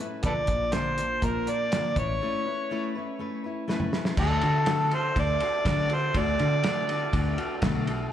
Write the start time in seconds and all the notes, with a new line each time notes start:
Already playing: A2
0.00 C#4 E4 B4
0.23 A#1 A#2 D3 F3 A#3 D4 A4 A#4 B4 D5, kick, closed hi-hat
0.47 A#1 D4 A#4, kick, closed hi-hat
0.52 F3 A#3
0.72 A#2 D3 F3 A#3 D4 C5, snare, closed hi-hat
0.77 A#4
0.98 F3 A#3 D4 A#4, closed hi-hat
1.22 A#2 F3 A#3 D4 A#4, kick, closed hi-hat
1.47 F3 A#3 D4 A#4 D5, closed hi-hat
1.71 A#2 D3 F3 A#3 D4 A#4, snare, closed hi-hat
1.96 A1 C#4 E4 B4 C#5, kick, closed hi-hat
2.21 A3 C#4 E4 B4
2.46 C#4 E4 B4
2.71 A3 C#4 E4 B4
2.95 C#4 E4 B4
3.19 A3 C#4 E4 B4
3.44 C#4 E4 B4
3.68 A3 C#4 E4 B4, snare
3.80 mid tom
3.92 C#4 E4 B4, snare
4.05 snare
4.17 D2 D3 A3 D4 F#4 A4, kick, crash
4.41 D3 D4 F#4 A4, ride
4.66 D3 A3 D4 F#4 A4, snare, ride
4.90 D4 F#4 A4, ride
4.95 C5
5.16 D2 A3 D4 F#4 A4 D5, kick, ride
5.40 D4 F#4 A4, ride
5.64 D3 A3 D4 F#4 A4, kick, snare, ride
5.89 D4 F#4 A4, ride
5.94 C5
6.14 D2 D3 A3 D4 F#4 A4 D5, kick, ride
6.39 D3 D4 F#4 A4, ride
6.63 D3 A3 D4 F#4 A4, snare, ride
6.88 D4 F#4 A4, ride
7.12 D2 A3 D4 F#4 A4, kick, ride
7.37 D4 F#4 A4, ride
7.62 B1 D3 A3 D4 F#4 A4, kick, snare, ride
7.87 D4 F#4 A4, ride